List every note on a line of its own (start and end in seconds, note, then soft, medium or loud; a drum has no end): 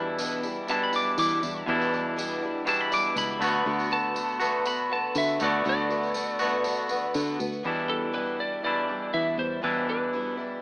0.00 0.58 E2 medium
0.00 0.66 E2 medium
0.00 0.66 B2 medium
0.00 0.18 E3 soft
0.00 0.67 E3 medium
0.00 0.19 G3 soft
0.00 0.67 G3 medium
0.00 0.19 D4 soft
0.00 0.70 D4 medium
0.00 0.18 E4 medium
0.00 0.67 E4 medium
0.18 0.43 E2 medium
0.18 0.43 B2 medium
0.18 0.44 E3 medium
0.18 0.43 G3 medium
0.18 0.42 D4 medium
0.18 0.41 E4 medium
0.18 tambourine medium
0.31 tambourine soft
0.43 0.66 E3 soft
0.43 0.67 G3 medium
0.43 0.68 D4 soft
0.43 0.68 E4 medium
0.43 tambourine medium
0.67 1.65 E2 medium
0.67 1.65 B2 medium
0.67 0.92 E3 medium
0.67 0.93 G3 medium
0.67 0.92 D4 medium
0.67 0.91 E4 medium
0.67 0.81 A5 medium
0.67 tambourine medium
0.84 0.94 B5 medium
0.92 1.17 E3 soft
0.92 1.17 G3 soft
0.92 1.18 D4 medium
0.92 1.17 E4 medium
0.92 1.18 D6 medium
0.92 tambourine medium
1.17 1.42 E2 medium
1.17 1.43 B2 medium
1.17 1.40 E3 medium
1.17 1.43 E3 medium
1.17 1.43 G3 medium
1.17 1.42 D4 medium
1.17 1.41 E4 medium
1.17 1.67 D6 medium
1.17 tambourine medium
1.42 1.65 E2 medium
1.42 1.67 E3 soft
1.42 1.67 G3 soft
1.42 1.68 D4 medium
1.42 1.67 E4 medium
1.42 tambourine medium
1.67 1.92 E2 medium
1.67 2.57 E2 loud
1.67 1.92 B2 medium
1.67 1.92 E3 medium
1.67 1.92 G3 medium
1.67 1.91 D4 medium
1.67 1.90 E4 medium
1.81 tambourine soft
1.91 2.16 E3 soft
1.91 2.17 G3 soft
1.91 2.17 D4 medium
1.91 2.17 E4 medium
1.91 tambourine soft
2.16 2.41 E2 medium
2.16 2.42 B2 medium
2.16 2.42 E3 medium
2.16 2.42 G3 medium
2.16 2.41 D4 medium
2.16 2.40 E4 medium
2.16 tambourine loud
2.31 tambourine soft
2.41 2.64 E3 soft
2.41 2.66 G3 soft
2.41 2.67 D4 soft
2.41 2.66 E4 medium
2.65 3.39 E2 medium
2.65 3.39 B2 medium
2.65 2.91 E3 medium
2.65 2.91 G3 medium
2.65 2.90 D4 medium
2.65 2.89 E4 medium
2.65 2.81 A5 medium
2.65 tambourine medium
2.81 2.94 B5 medium
2.90 3.15 E3 soft
2.90 3.15 G3 soft
2.90 3.15 D4 medium
2.90 3.16 E4 medium
2.90 3.17 D6 medium
2.90 tambourine medium
3.15 3.39 C#2 medium
3.15 3.40 E2 medium
3.15 3.41 B2 medium
3.15 3.41 E3 medium
3.15 3.41 G3 medium
3.15 3.41 D4 medium
3.15 3.40 E4 medium
3.15 3.65 B5 medium
3.15 tambourine medium
3.39 3.63 D2 medium
3.39 4.42 D3 medium
3.39 3.65 B3 medium
3.39 3.66 F#4 soft
3.39 tambourine medium
3.44 3.65 A3 soft
3.65 4.56 D2 medium
3.65 3.91 D3 medium
3.65 3.91 A3 medium
3.65 3.91 B3 medium
3.65 3.89 F#4 medium
3.79 tambourine soft
3.90 4.14 A3 soft
3.90 4.14 B3 medium
3.90 4.15 F#4 medium
3.90 4.64 A5 loud
3.90 tambourine soft
4.14 4.40 D3 medium
4.14 4.40 A3 medium
4.14 4.40 B3 medium
4.14 4.38 F#4 medium
4.14 tambourine medium
4.28 tambourine soft
4.39 5.38 D3 medium
4.39 4.65 A3 soft
4.39 4.66 B3 medium
4.39 4.65 F#4 medium
4.39 tambourine medium
4.65 4.90 D3 soft
4.65 4.91 A3 medium
4.65 4.90 B3 medium
4.65 4.88 F#4 medium
4.65 4.90 B5 medium
4.65 tambourine medium
4.89 5.14 A3 soft
4.89 5.15 B3 soft
4.89 5.15 F#4 medium
4.89 5.16 A5 medium
5.14 5.40 D3 medium
5.14 5.38 D3 loud
5.14 5.40 A3 medium
5.14 5.39 B3 medium
5.14 5.38 F#4 medium
5.14 5.41 E5 medium
5.14 tambourine medium
5.39 5.63 D2 medium
5.39 6.38 D3 medium
5.39 5.64 A3 soft
5.39 5.64 B3 soft
5.39 5.65 F#4 medium
5.39 tambourine medium
5.44 5.66 D5 medium
5.64 6.55 D2 medium
5.64 5.89 D3 medium
5.64 5.90 A3 medium
5.64 5.89 B3 medium
5.64 5.88 F#4 medium
5.64 tambourine soft
5.69 7.12 D5 loud
5.89 6.14 A3 soft
5.89 6.14 B3 soft
5.89 6.14 F#4 medium
5.89 tambourine soft
6.03 tambourine soft
6.14 6.39 D3 medium
6.14 6.40 A3 medium
6.14 6.39 B3 medium
6.14 6.38 F#4 medium
6.14 tambourine medium
6.39 7.39 D3 medium
6.39 6.64 A3 medium
6.39 6.65 B3 medium
6.39 6.64 F#4 medium
6.39 tambourine medium
6.64 6.89 D3 medium
6.64 6.90 A3 medium
6.64 6.89 B3 medium
6.64 6.88 F#4 medium
6.64 tambourine medium
6.77 tambourine soft
6.89 7.13 A3 soft
6.89 7.14 B3 medium
6.89 7.14 F#4 medium
6.89 tambourine medium
7.14 7.39 D3 medium
7.14 7.37 D3 loud
7.14 7.39 A3 medium
7.14 7.40 B3 medium
7.14 7.38 F#4 medium
7.14 tambourine medium
7.39 7.62 D2 medium
7.39 7.64 A3 soft
7.39 7.65 B3 medium
7.39 7.64 F#4 medium
7.39 tambourine medium
7.52 tambourine soft
7.63 7.88 E2 medium
7.63 8.54 E2 medium
7.63 7.89 B2 medium
7.63 7.89 E3 medium
7.63 7.89 G3 medium
7.63 7.88 D4 medium
7.63 7.87 E4 medium
7.88 8.12 E3 soft
7.88 8.13 G3 soft
7.88 8.13 D4 soft
7.88 8.13 E4 soft
7.88 8.14 A4 medium
8.13 8.38 E2 medium
8.13 8.38 B2 medium
8.13 8.38 E3 medium
8.13 8.39 G3 medium
8.13 8.38 D4 medium
8.13 8.37 E4 medium
8.13 8.37 B4 medium
8.38 8.62 E3 soft
8.38 8.62 G3 soft
8.38 8.64 D4 soft
8.38 8.63 E4 soft
8.38 8.63 D5 medium
8.63 9.60 E2 medium
8.63 9.61 B2 medium
8.63 8.88 E3 medium
8.63 8.88 G3 medium
8.63 8.87 D4 medium
8.63 8.86 E4 medium
8.63 9.10 D5 medium
8.87 9.13 E3 soft
8.87 9.14 G3 soft
8.87 9.13 D4 soft
8.87 9.13 E4 soft
9.13 9.38 E2 medium
9.13 9.38 B2 medium
9.13 9.36 E3 medium
9.13 9.38 E3 medium
9.13 9.38 G3 medium
9.13 9.38 D4 medium
9.13 9.37 E4 medium
9.13 9.37 E5 medium
9.38 9.60 E2 medium
9.38 9.62 E3 soft
9.38 9.62 G3 soft
9.38 9.62 D4 soft
9.38 9.63 E4 soft
9.38 9.63 C5 medium
9.62 9.87 E2 medium
9.62 10.53 E2 medium
9.62 9.88 B2 medium
9.62 9.88 E3 medium
9.62 9.88 G3 medium
9.62 9.88 D4 medium
9.62 9.87 E4 medium
9.62 9.87 B4 medium
9.88 10.13 E3 soft
9.88 10.13 G3 soft
9.88 10.13 D4 soft
9.88 10.13 E4 medium
9.88 10.35 B4 medium
10.13 10.38 E2 medium
10.13 10.38 B2 medium
10.13 10.38 E3 medium
10.13 10.38 G3 medium
10.13 10.37 D4 medium
10.13 10.36 E4 medium
10.37 10.61 E3 soft
10.37 10.62 G3 soft
10.37 10.62 D4 soft
10.37 10.62 E4 soft